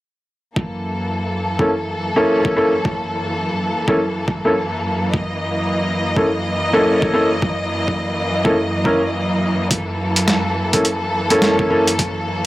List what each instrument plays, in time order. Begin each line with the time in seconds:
0.56 string section F#2 E3 A#3 A4, kick
1.59 grand piano A#3 C#4 E4 A4, kick
2.16 grand piano A#3 C#4 E4 A4
2.45 kick
2.56 grand piano A#3 C#4 E4 A4
2.85 kick
3.88 grand piano A#3 C#4 E4 A4, kick
4.28 kick
4.45 grand piano A#3 C#4 E4 A4
5.13 string section D#5, kick
6.16 grand piano A#3 C#4 E4 A4, kick
6.73 grand piano A#3 C#4 E4 A4
7.02 kick
7.13 grand piano A#3 C#4 E4 A4
7.42 kick
7.88 kick
8.45 grand piano A#3 C#4 E4 A4, kick
8.85 grand piano A#3 C#4 E4 A#4, kick
9.70 string section A4, kick, closed hi-hat
10.16 closed hi-hat
10.28 snare, closed hi-hat
10.73 grand piano A#3 C#4 E4 A4, kick, closed hi-hat
10.85 closed hi-hat
11.30 grand piano A#3 C#4 E4 A4, closed hi-hat
11.42 snare, closed hi-hat
11.59 kick
11.70 grand piano A#3 C#4 E4 A4
11.87 closed hi-hat
11.99 kick, closed hi-hat